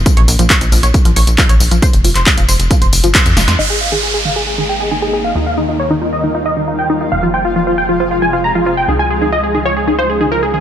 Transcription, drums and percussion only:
0.06 kick loud
0.06 closed hi-hat medium
0.06 tambourine soft
0.17 closed hi-hat medium
0.28 open hi-hat medium
0.28 tambourine medium
0.39 closed hi-hat medium
0.39 tambourine soft
0.50 kick loud
0.50 clap loud
0.50 closed hi-hat medium
0.50 tambourine soft
0.61 closed hi-hat medium
0.61 tambourine soft
0.72 open hi-hat medium
0.72 tambourine medium
0.83 closed hi-hat medium
0.83 tambourine soft
0.94 kick loud
0.94 closed hi-hat medium
0.94 tambourine soft
1.05 closed hi-hat medium
1.05 tambourine soft
1.16 open hi-hat medium
1.16 tambourine medium
1.27 closed hi-hat medium
1.27 tambourine soft
1.38 kick loud
1.38 clap loud
1.38 closed hi-hat medium
1.38 tambourine soft
1.49 closed hi-hat medium
1.49 tambourine soft
1.60 open hi-hat medium
1.60 tambourine medium
1.71 closed hi-hat medium
1.71 tambourine soft
1.82 kick loud
1.82 closed hi-hat medium
1.82 tambourine soft
1.93 closed hi-hat medium
1.93 tambourine soft
2.04 open hi-hat loud
2.04 tambourine medium
2.15 clap soft
2.15 closed hi-hat medium
2.15 tambourine soft
2.26 kick loud
2.26 clap loud
2.26 closed hi-hat medium
2.26 tambourine soft
2.38 closed hi-hat medium
2.38 tambourine soft
2.49 open hi-hat medium
2.49 tambourine medium
2.60 closed hi-hat medium
2.60 tambourine soft
2.71 kick loud
2.71 closed hi-hat medium
2.71 tambourine soft
2.82 closed hi-hat medium
2.82 tambourine soft
2.93 open hi-hat loud
2.93 tambourine medium
3.04 closed hi-hat medium
3.04 tambourine soft
3.15 kick loud
3.15 clap loud
3.15 closed hi-hat medium
3.15 tambourine soft
3.26 closed hi-hat medium
3.26 tambourine soft
3.37 snare medium
3.37 open hi-hat medium
3.37 tambourine medium
3.48 snare medium
3.48 closed hi-hat medium
3.48 tambourine soft

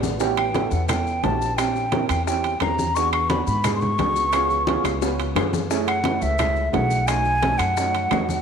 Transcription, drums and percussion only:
0.03 low bongo medium
0.03 high conga medium
0.03 maracas medium
0.20 high bongo medium
0.20 high conga soft
0.20 maracas medium
0.37 high bongo soft
0.37 high conga soft
0.37 high timbale medium
0.37 claves medium
0.37 maracas soft
0.54 high bongo medium
0.54 high conga loud
0.54 high timbale medium
0.54 maracas soft
0.71 high bongo soft
0.71 high conga soft
0.71 maracas medium
0.89 high bongo medium
0.89 high conga soft
0.89 low conga medium
0.89 high timbale loud
0.89 claves medium
0.89 maracas medium
1.06 high conga soft
1.06 maracas soft
1.24 high bongo soft
1.24 low bongo medium
1.24 high conga medium
1.24 high timbale medium
1.24 low timbale medium
1.24 maracas soft
1.41 high bongo soft
1.41 high conga soft
1.41 maracas medium
1.58 high bongo medium
1.58 high conga soft
1.58 high timbale medium
1.58 claves medium
1.58 maracas medium
1.76 high bongo soft
1.76 high conga soft
1.76 maracas soft
1.92 high bongo medium
1.92 high conga loud
1.92 high timbale medium
1.92 maracas soft
2.09 high bongo soft
2.09 high conga soft
2.09 high timbale medium
2.09 claves medium
2.09 maracas medium
2.27 high bongo medium
2.27 high conga soft
2.27 maracas medium
2.44 high conga soft
2.44 high timbale medium
2.44 maracas soft
2.60 high bongo soft
2.60 low bongo medium
2.60 high conga medium
2.60 high timbale medium
2.60 claves medium
2.60 maracas soft
2.79 high bongo soft
2.79 high conga medium
2.79 maracas medium
2.96 high bongo medium
2.96 high conga soft
2.96 maracas medium
3.13 high bongo soft
3.13 high conga soft
3.13 high timbale medium
3.13 claves medium
3.13 maracas soft
3.30 high bongo medium
3.30 high conga loud
3.30 high timbale medium
3.30 maracas soft
3.47 high bongo soft
3.47 high conga soft
3.47 maracas medium
3.64 high bongo medium
3.64 high conga soft
3.64 low conga medium
3.64 high timbale loud
3.64 claves medium
3.64 maracas medium
3.81 high conga soft
3.81 low conga medium
3.81 maracas soft
3.98 high bongo soft
3.98 low bongo medium
3.98 high conga medium
3.98 high timbale medium
3.98 maracas soft
4.16 high bongo soft
4.16 high conga soft
4.16 maracas medium
4.32 high bongo medium
4.32 high conga soft
4.32 high timbale medium
4.32 claves medium
4.32 maracas medium
4.50 high bongo soft
4.50 high conga soft
4.50 maracas soft
4.67 high bongo medium
4.67 high conga loud
4.67 high timbale medium
4.67 maracas soft
4.85 high bongo medium
4.85 high conga soft
4.85 high timbale medium
4.85 claves medium
4.85 maracas medium
5.02 high bongo medium
5.02 high conga soft
5.02 maracas medium
5.18 high conga soft
5.18 high timbale medium
5.18 maracas soft
5.36 low bongo loud
5.36 high conga medium
5.36 high timbale medium
5.36 claves medium
5.36 maracas soft
5.53 low bongo medium
5.53 high conga medium
5.53 maracas medium
5.70 high bongo medium
5.70 high conga soft
5.70 maracas medium
5.87 high bongo soft
5.87 high conga soft
5.87 high timbale medium
5.87 claves medium
5.87 maracas soft
6.04 high bongo medium
6.04 high conga medium
6.04 high timbale medium
6.04 maracas soft
6.21 high bongo soft
6.21 high conga soft
6.21 maracas medium
6.38 high bongo medium
6.38 high conga soft
6.38 low conga medium
6.38 high timbale medium
6.38 claves medium
6.38 maracas medium
6.56 high conga soft
6.56 maracas soft
6.73 high bongo soft
6.73 low bongo medium
6.73 high conga medium
6.73 high timbale medium
6.73 low timbale medium
6.73 maracas soft
6.90 high bongo soft
6.90 high conga soft
6.90 maracas medium
7.08 high bongo medium
7.08 high conga soft
7.08 high timbale medium
7.08 claves medium
7.08 maracas medium
7.25 high bongo soft
7.25 high conga soft
7.25 maracas soft
7.42 high bongo medium
7.42 high conga medium
7.42 high timbale medium
7.42 maracas soft
7.59 high bongo soft
7.59 high conga soft
7.59 high timbale medium
7.59 claves medium
7.59 maracas medium
7.77 high bongo medium
7.77 high conga soft
7.77 maracas medium
7.94 high conga soft
7.94 high timbale medium
7.94 maracas soft
8.11 high bongo soft
8.11 low bongo medium
8.11 high conga medium
8.11 high timbale medium
8.11 low timbale medium
8.11 claves medium
8.11 maracas soft
8.29 high bongo soft
8.29 high conga medium
8.29 maracas medium

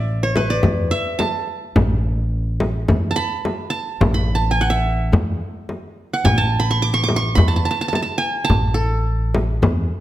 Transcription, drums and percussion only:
0.36 frame drum medium
0.63 frame drum medium
1.20 frame drum medium
1.76 frame drum loud
2.60 frame drum medium
2.88 frame drum medium
3.45 frame drum medium
4.01 frame drum loud
5.13 frame drum medium
5.69 frame drum medium
6.25 frame drum medium
7.09 frame drum medium
7.38 frame drum medium
7.93 frame drum medium
8.50 frame drum medium
9.35 frame drum medium
9.63 frame drum medium

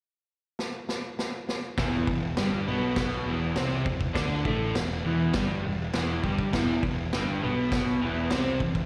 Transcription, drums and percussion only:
0.59 snare medium
0.89 snare medium
1.19 snare medium
1.49 snare medium
1.78 kick loud
1.78 snare loud
1.78 crash medium
2.07 kick medium
2.37 snare loud
2.37 crash medium
2.96 kick loud
2.96 snare loud
2.96 crash medium
3.56 snare loud
3.56 crash medium
3.86 kick medium
4.01 kick medium
4.15 kick loud
4.15 snare loud
4.15 crash medium
4.45 kick medium
4.75 snare loud
4.75 crash medium
5.33 kick loud
5.33 snare loud
5.33 crash medium
5.94 snare loud
5.94 crash medium
6.24 kick medium
6.39 kick medium
6.53 kick loud
6.53 snare loud
6.53 crash medium
6.83 kick medium
7.13 snare loud
7.13 crash medium
7.72 kick loud
7.72 snare loud
7.72 crash medium
8.30 snare loud
8.30 crash medium
8.60 kick medium
8.75 kick medium

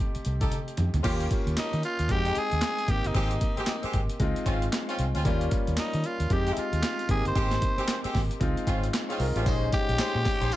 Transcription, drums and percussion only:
0.15 closed hi-hat soft
0.25 closed hi-hat medium
0.41 kick loud
0.41 closed hi-hat medium
0.52 closed hi-hat medium
0.52 high tom medium
0.68 closed hi-hat medium
0.77 closed hi-hat medium
0.77 mid tom medium
0.94 closed hi-hat medium
0.94 floor tom medium
1.04 kick loud
1.04 closed hi-hat medium
1.04 crash loud
1.20 closed hi-hat medium
1.31 kick medium
1.31 closed hi-hat medium
1.47 closed hi-hat soft
1.57 snare loud
1.57 clap medium
1.57 closed hi-hat medium
1.73 closed hi-hat medium
1.83 closed hi-hat medium
1.99 closed hi-hat medium
2.09 kick medium
2.09 closed hi-hat medium
2.25 closed hi-hat soft
2.35 closed hi-hat medium
2.51 closed hi-hat medium
2.62 snare loud
2.62 clap medium
2.62 closed hi-hat medium
2.78 closed hi-hat medium
2.88 kick loud
2.88 closed hi-hat medium
3.04 closed hi-hat medium
3.15 kick loud
3.15 closed hi-hat medium
3.31 closed hi-hat medium
3.41 kick loud
3.41 closed hi-hat medium
3.57 closed hi-hat soft
3.67 snare loud
3.67 clap medium
3.67 closed hi-hat medium
3.83 closed hi-hat soft
3.93 kick medium
3.93 closed hi-hat medium
4.09 closed hi-hat medium
4.20 kick medium
4.20 closed hi-hat medium
4.36 closed hi-hat medium
4.46 kick medium
4.46 closed hi-hat medium
4.62 closed hi-hat medium
4.73 snare loud
4.73 clap medium
4.73 closed hi-hat medium
4.89 closed hi-hat medium
4.99 closed hi-hat medium
5.15 closed hi-hat medium
5.25 kick loud
5.25 closed hi-hat medium
5.41 closed hi-hat medium
5.51 kick medium
5.51 closed hi-hat medium
5.67 closed hi-hat medium
5.77 snare loud
5.77 clap loud
5.77 closed hi-hat medium
5.93 closed hi-hat medium
6.04 closed hi-hat medium
6.20 closed hi-hat medium
6.30 kick loud
6.30 closed hi-hat medium
6.47 closed hi-hat medium
6.57 closed hi-hat medium
6.73 closed hi-hat medium
6.83 snare loud
6.83 clap loud
6.83 closed hi-hat medium
6.99 closed hi-hat medium
7.09 kick loud
7.09 closed hi-hat medium
7.25 closed hi-hat medium
7.35 kick loud
7.35 closed hi-hat medium
7.51 snare medium
7.51 closed hi-hat medium
7.62 kick medium
7.62 closed hi-hat medium
7.78 closed hi-hat medium
7.88 snare loud
7.88 clap loud
7.88 closed hi-hat medium
8.04 closed hi-hat medium
8.15 kick medium
8.15 snare medium
8.15 open hi-hat medium
8.31 closed hi-hat medium
8.41 kick medium
8.41 closed hi-hat medium
8.57 closed hi-hat medium
8.67 kick medium
8.67 closed hi-hat medium
8.84 closed hi-hat medium
8.94 snare loud
8.94 clap loud
8.94 closed hi-hat medium
9.10 closed hi-hat medium
9.20 open hi-hat medium
9.36 closed hi-hat medium
9.46 kick loud
9.46 closed hi-hat medium
9.46 tambourine medium
9.72 kick loud
9.72 closed hi-hat medium
9.72 tambourine medium
9.89 closed hi-hat medium
9.99 snare loud
9.99 clap loud
9.99 closed hi-hat medium
9.99 tambourine loud
10.25 kick medium
10.25 snare medium
10.25 open hi-hat medium
10.25 tambourine medium
10.41 closed hi-hat medium
10.52 closed hi-hat medium
10.52 tambourine medium

